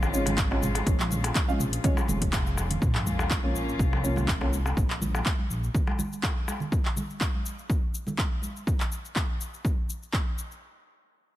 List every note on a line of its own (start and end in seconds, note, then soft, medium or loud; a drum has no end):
0.00 0.82 G#1 medium
0.00 2.78 F3 medium
0.00 0.11 G#3 medium
0.00 2.78 G#3 medium
0.00 0.11 C#4 medium
0.00 2.78 C#4 medium
0.00 0.11 F4 medium
0.00 2.78 F4 medium
0.00 0.11 C#5 medium
0.00 darbuka ka loud
0.00 shaker soft
0.13 0.48 G#3 medium
0.13 0.48 C#4 medium
0.13 0.48 F4 medium
0.13 0.48 C#5 medium
0.13 shaker medium
0.26 closed hi-hat medium
0.26 darbuka ka medium
0.26 high conga medium
0.26 low conga medium
0.26 shaker soft
0.38 kick loud
0.38 clap loud
0.38 closed hi-hat soft
0.38 shaker medium
0.51 0.60 G#3 medium
0.51 0.60 C#4 medium
0.51 0.60 F4 medium
0.51 0.60 C#5 medium
0.51 darbuka ka medium
0.51 darbuka tek medium
0.62 mid tom medium
0.62 high conga medium
0.62 shaker medium
0.75 closed hi-hat medium
0.75 darbuka tek medium
0.75 shaker soft
0.86 1.31 A#1 loud
0.86 kick loud
0.86 closed hi-hat soft
0.86 shaker medium
1.00 clap medium
1.00 shaker soft
1.11 high conga medium
1.11 low conga medium
1.11 shaker medium
1.24 closed hi-hat medium
1.24 darbuka tek loud
1.24 shaker soft
1.35 kick loud
1.35 clap loud
1.35 closed hi-hat soft
1.35 shaker medium
1.48 1.58 G#3 loud
1.48 1.58 C#4 medium
1.48 1.58 F4 medium
1.48 1.58 F5 loud
1.48 high conga medium
1.48 shaker soft
1.60 1.79 A#1 medium
1.60 mid tom medium
1.60 shaker medium
1.73 closed hi-hat medium
1.73 shaker soft
1.84 1.95 G#3 loud
1.84 1.95 C#4 medium
1.84 1.95 F4 medium
1.84 1.95 C#5 loud
1.84 kick loud
1.84 closed hi-hat soft
1.84 low conga loud
1.84 shaker medium
1.97 darbuka ka loud
1.97 high conga medium
1.97 shaker soft
2.08 2.78 F1 medium
2.08 high conga loud
2.08 low conga loud
2.08 shaker medium
2.22 kick medium
2.22 closed hi-hat medium
2.22 shaker soft
2.33 kick loud
2.33 clap loud
2.33 closed hi-hat soft
2.33 darbuka ka loud
2.33 darbuka tek medium
2.33 shaker medium
2.47 shaker soft
2.57 darbuka tek medium
2.57 high conga medium
2.57 shaker medium
2.71 closed hi-hat medium
2.71 low conga loud
2.71 shaker soft
2.82 3.26 A#1 loud
2.82 4.75 F3 medium
2.82 4.75 A#3 medium
2.82 4.75 C#4 medium
2.82 4.75 F4 medium
2.82 kick loud
2.82 sub drop medium
2.82 shaker soft
2.95 clap medium
2.95 darbuka ka medium
3.07 high conga medium
3.07 low conga medium
3.07 shaker medium
3.19 darbuka tek medium
3.19 shaker soft
3.31 kick loud
3.31 clap loud
3.31 shaker soft
3.43 4.01 A#3 medium
3.43 4.01 C#4 medium
3.43 4.01 F4 medium
3.43 4.01 C#5 medium
3.43 high conga medium
3.55 3.74 A#1 medium
3.55 shaker medium
3.69 shaker soft
3.79 4.73 C2 medium
3.79 kick loud
3.79 shaker medium
3.93 darbuka ka loud
4.04 4.38 A#3 medium
4.04 4.38 C#4 medium
4.04 4.38 F4 medium
4.04 4.38 C#5 medium
4.04 shaker medium
4.16 darbuka ka medium
4.16 high conga loud
4.16 low conga loud
4.16 shaker soft
4.28 kick loud
4.28 clap loud
4.28 shaker soft
4.41 4.50 A#3 medium
4.41 4.50 C#4 medium
4.41 4.50 F4 medium
4.41 4.50 C#5 medium
4.41 darbuka ka medium
4.41 darbuka tek medium
4.52 high conga medium
4.52 shaker medium
4.66 darbuka tek medium
4.66 shaker soft
4.77 5.22 A#1 loud
4.77 kick loud
4.77 shaker medium
4.90 clap medium
4.90 shaker soft
5.02 high conga medium
5.02 low conga medium
5.02 shaker medium
5.15 darbuka tek medium
5.15 shaker soft
5.26 kick loud
5.26 clap loud
5.26 shaker medium
5.39 high conga medium
5.50 5.69 A#1 medium
5.50 shaker medium
5.64 shaker soft
5.74 kick loud
5.74 low conga medium
5.74 shaker medium
5.87 darbuka ka loud
5.87 high conga medium
5.99 high conga loud
5.99 low conga medium
5.99 shaker medium
6.13 shaker soft
6.23 kick loud
6.23 clap loud
6.23 darbuka ka loud
6.23 darbuka tek medium
6.23 shaker medium
6.48 high conga medium
6.48 darbuka tek medium
6.48 shaker medium
6.60 low conga loud
6.60 shaker soft
6.72 kick loud
6.72 shaker medium
6.85 clap medium
6.96 high conga medium
6.96 low conga medium
6.96 shaker medium
7.10 shaker soft
7.21 kick loud
7.21 clap loud
7.21 shaker medium
7.34 high conga medium
7.46 shaker medium
7.59 shaker soft
7.70 kick loud
7.70 shaker medium
7.94 shaker medium
8.07 high conga medium
8.07 low conga loud
8.07 shaker soft
8.18 kick loud
8.18 clap loud
8.18 shaker medium
8.42 high conga medium
8.42 shaker medium
8.57 shaker soft
8.67 kick loud
8.67 shaker soft
8.80 clap medium
8.80 shaker soft
8.92 shaker medium
9.05 shaker soft
9.16 kick loud
9.16 clap medium
9.16 shaker soft
9.41 shaker medium
9.54 shaker soft
9.65 kick loud
9.65 shaker soft
9.90 shaker medium
10.03 shaker soft
10.13 kick loud
10.13 clap medium
10.13 shaker soft
10.38 shaker medium
10.52 shaker soft